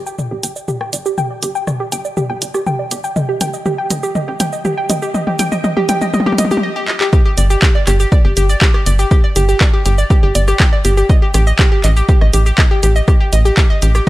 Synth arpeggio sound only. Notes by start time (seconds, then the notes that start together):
0.06 G5
0.19 D5
0.31 G4
0.43 G5
0.56 D5
0.68 G4
0.81 G5
0.93 D5
1.06 G4
1.18 G5
1.30 D5
1.43 G4
1.55 G5
1.67 D5
1.80 G4
1.92 G5
2.05 D5
2.17 G4
2.30 G5
2.42 D5
2.54 G4
2.67 G5
2.79 D5
2.91 G4
3.04 G5
3.16 D#5
3.29 G4
3.41 G5
3.54 D#5
3.66 G4
3.78 G5
3.91 D#5
4.03 G4
4.15 D#5
4.28 G4
4.40 G5
4.53 D#5
4.65 G4
4.78 G5
4.90 D#5
5.02 G4
5.14 D#5
5.27 G4
5.39 G5
5.52 D#5
5.64 D#5
5.77 G4
5.89 G5
6.01 D#5
6.14 D#5
6.26 G4
6.38 D#5
6.51 G4
6.63 D#5
6.76 G4
6.88 D#5
7.01 G4
7.13 G4
7.25 G4
7.38 D5
7.50 G4
7.62 G4
7.75 D5
7.87 G4
8.00 G4
8.12 D5
8.25 G4
8.37 G4
8.49 D5
8.62 G4
8.74 G4
8.86 D5
8.99 G4
9.11 G4
9.24 D5
9.36 G4
9.49 G4
9.61 D5
9.73 G4
9.86 G4
9.98 D5
10.10 G4
10.23 G4
10.35 D5
10.48 G4
10.60 G4
10.73 D5
10.85 G4
10.97 G4
11.10 D#5
11.22 G4
11.34 G4
11.47 D#5
11.59 G4
11.72 G4
11.84 D#5
11.97 G4
12.09 G4
12.21 D#5
12.33 G4
12.46 G4
12.58 D#5
12.71 G4
12.83 G4
12.96 D#5
13.08 G4
13.20 G4
13.33 D#5
13.45 G4
13.57 G4
13.70 D#5
13.82 G4
13.95 G4